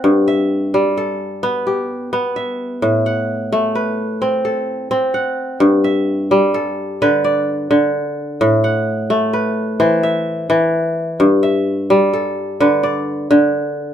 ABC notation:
X:1
M:12/8
L:1/8
Q:3/8=86
K:G
V:1 name="Kora"
f e3 A3 G3 e2- | e f3 B3 A3 f2- | f e3 A2 B d3 z2 | z f3 B2 c e3 z2 |
z e3 A2 B d3 z2 |]
V:2 name="Kora" clef=bass
G,,2 z G,2 z B,2 z B,2 z | A,,2 z A,2 z C2 z C2 z | G,,2 z G,2 z D,2 z D,2 z | A,,2 z A,2 z E,2 z E,2 z |
G,,2 z G,2 z D,2 z D,2 z |]